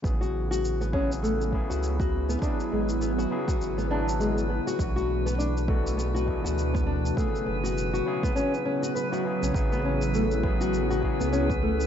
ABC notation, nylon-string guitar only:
X:1
M:4/4
L:1/16
Q:"Swing 16ths" 1/4=101
K:A
V:1 name="Nylon-string guitar"
B, F2 F2 B, C z A, z B, F2 F2 B, | D z G, z B, F2 F2 B, D z G, z B, F | z F2 B, D z A, z B, F2 F2 B, D z | A, z B, F2 F2 B, C z C F B F z C |
z B, C z A, z B, F2 F2 B, C z A, z |]